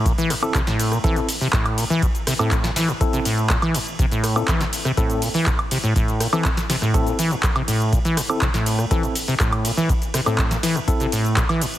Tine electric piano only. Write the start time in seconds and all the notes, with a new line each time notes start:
0.43 C4 E4 A4
1.04 C4 E4 A4
2.39 C4 E4 A4
3.01 C4 E4 A4
4.36 C4 E4 A4
4.97 C4 E4 A4
6.33 C4 E4 A4
6.94 C4 E4 A4
8.29 C4 E4 A4
8.91 C4 E4 A4
10.26 C4 E4 A4
10.88 C4 E4 A4